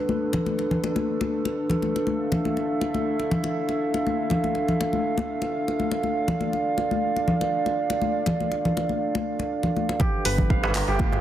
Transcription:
0.00 2.03 G3 medium
0.00 9.97 D4 medium
0.00 9.97 A4 medium
0.00 2.03 B4 medium
0.09 high conga medium
0.33 muted conga soft
0.33 low conga loud
0.46 high conga medium
0.59 muted conga soft
0.71 low conga medium
0.84 muted conga medium
0.96 high conga medium
1.21 muted conga soft
1.21 high conga medium
1.45 muted conga soft
1.70 muted conga soft
1.70 low conga medium
1.82 high conga medium
1.96 muted conga soft
2.07 6.00 E5 medium
2.07 9.97 F5 medium
2.07 high conga medium
2.32 muted conga soft
2.32 low conga medium
2.45 high conga medium
2.57 muted conga soft
2.81 muted conga soft
2.94 high conga medium
3.19 muted conga soft
3.31 low conga medium
3.44 muted conga medium
3.69 muted conga soft
3.94 muted conga soft
4.07 high conga medium
4.30 muted conga soft
4.30 low conga medium
4.44 high conga medium
4.55 muted conga soft
4.68 low conga medium
4.81 muted conga medium
4.93 high conga medium
5.18 muted conga soft
5.18 high conga loud
5.42 muted conga soft
5.68 muted conga soft
5.80 high conga medium
5.91 muted conga medium
6.03 9.96 D5 medium
6.03 high conga medium
6.28 muted conga soft
6.28 low conga loud
6.41 high conga medium
6.53 muted conga soft
6.78 muted conga medium
6.91 high conga medium
7.16 muted conga soft
7.28 low conga medium
7.41 muted conga medium
7.66 muted conga soft
7.90 muted conga medium
8.02 high conga medium
8.26 muted conga medium
8.26 low conga loud
8.40 high conga medium
8.52 muted conga soft
8.65 low conga medium
8.77 muted conga medium
8.89 high conga medium
9.15 muted conga soft
9.15 high conga loud
9.39 muted conga medium
9.39 high conga medium
9.63 muted conga soft
9.63 low conga medium
9.77 high conga medium
9.89 muted conga medium
10.00 11.21 G3 medium
10.00 11.21 D4 medium
10.00 10.88 G4 medium
10.00 11.21 A4 medium
10.00 11.21 B4 loud
10.00 kick loud
10.00 muted conga medium
10.00 low conga loud
10.25 10.82 G1 loud
10.25 10.63 B4 loud
10.25 open hi-hat loud
10.38 kick medium
10.38 muted conga soft
10.38 low conga loud
10.50 11.21 F5 medium
10.50 kick loud
10.63 11.21 B4 medium
10.63 darbuka tek medium
10.75 clap medium
10.75 open hi-hat medium
10.75 muted conga medium
10.88 11.19 G1 medium
10.88 11.21 G4 loud
10.88 darbuka ka medium
10.99 11.21 F4 medium
10.99 kick loud
10.99 high conga medium
11.12 muted conga soft
11.12 darbuka dum medium

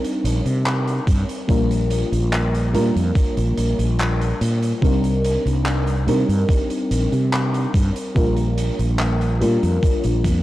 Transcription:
0.00 1.48 G3 medium
0.00 1.51 C4 medium
0.00 1.49 D4 medium
0.00 1.52 D#4 medium
0.00 1.50 A#4 medium
0.04 closed hi-hat medium
0.24 0.40 A#1 medium
0.24 closed hi-hat loud
0.45 0.99 C3 medium
0.45 closed hi-hat medium
0.66 clap loud
0.66 closed hi-hat medium
0.88 closed hi-hat soft
1.07 1.23 G2 medium
1.07 kick loud
1.07 closed hi-hat medium
1.29 closed hi-hat medium
1.48 2.03 A#1 loud
1.48 2.69 G3 medium
1.48 2.69 A#3 medium
1.48 2.69 D4 medium
1.48 2.70 F4 medium
1.48 2.70 A#4 medium
1.48 kick loud
1.48 closed hi-hat medium
1.71 closed hi-hat medium
1.90 closed hi-hat medium
2.12 2.76 A#1 medium
2.12 closed hi-hat medium
2.32 clap loud
2.32 closed hi-hat medium
2.54 closed hi-hat medium
2.73 2.90 A#2 medium
2.73 3.07 G3 medium
2.73 3.07 A#3 medium
2.73 3.08 D4 medium
2.73 3.08 F4 medium
2.73 3.08 A#4 medium
2.73 closed hi-hat medium
2.96 3.10 F2 medium
2.96 closed hi-hat medium
3.15 kick loud
3.15 closed hi-hat medium
3.37 3.52 A#1 medium
3.37 closed hi-hat medium
3.58 3.73 A#1 medium
3.58 closed hi-hat medium
3.79 4.32 A#1 medium
3.79 closed hi-hat medium
3.99 clap loud
3.99 closed hi-hat medium
4.21 closed hi-hat medium
4.41 4.72 A#2 medium
4.41 closed hi-hat loud
4.62 closed hi-hat medium
4.81 5.36 C2 loud
4.81 6.02 G3 medium
4.81 6.02 C4 medium
4.81 6.03 D4 medium
4.81 6.03 D#4 medium
4.81 6.04 A#4 medium
4.81 kick loud
4.81 closed hi-hat medium
5.04 closed hi-hat medium
5.25 closed hi-hat medium
5.46 6.09 C2 medium
5.46 closed hi-hat medium
5.66 clap loud
5.66 closed hi-hat medium
5.87 closed hi-hat medium
6.07 6.23 C3 medium
6.07 6.41 G3 medium
6.07 6.41 C4 medium
6.07 6.41 D4 medium
6.07 6.41 D#4 medium
6.07 6.42 A#4 medium
6.07 closed hi-hat loud
6.29 6.44 G2 loud
6.29 closed hi-hat medium
6.49 kick loud
6.49 closed hi-hat medium
6.70 closed hi-hat medium
6.91 7.06 A#1 medium
6.91 closed hi-hat loud
7.12 7.65 C3 medium
7.12 closed hi-hat soft
7.33 clap loud
7.33 closed hi-hat medium
7.54 closed hi-hat medium
7.74 7.90 G2 medium
7.74 kick loud
7.74 closed hi-hat medium
7.96 closed hi-hat medium
8.15 8.70 A#1 loud
8.15 9.35 G3 medium
8.15 9.36 A#3 medium
8.15 9.36 D4 medium
8.15 9.37 F4 medium
8.15 9.37 A#4 medium
8.15 kick loud
8.15 closed hi-hat medium
8.37 closed hi-hat medium
8.58 closed hi-hat medium
8.79 9.43 A#1 medium
8.79 closed hi-hat soft
8.99 clap loud
8.99 closed hi-hat medium
9.21 closed hi-hat soft
9.40 9.57 A#2 medium
9.40 9.74 G3 medium
9.40 9.74 A#3 medium
9.40 9.75 D4 medium
9.40 9.75 F4 medium
9.40 9.75 A#4 medium
9.40 closed hi-hat medium
9.63 9.77 F2 medium
9.63 closed hi-hat soft
9.83 kick loud
9.83 closed hi-hat medium
10.03 10.26 A#1 medium
10.03 closed hi-hat medium
10.24 10.43 F2 medium
10.24 kick medium
10.24 closed hi-hat medium

